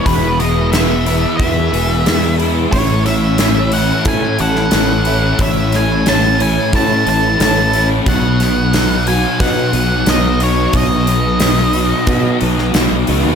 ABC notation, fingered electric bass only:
X:1
M:4/4
L:1/16
Q:1/4=90
K:Alyd
V:1 name="Fingered electric bass" clef=bass
E,,,8 E,,2 E,,,2 E,,4 | A,,,8 A,,2 A,,,2 A,,,4 | A,,,8 A,,2 A,,,2 A,,,4 | B,,,8 B,,2 B,,,2 B,,,4 |
B,,,8 B,,2 B,,,2 B,,, B,,, C,, D,, |]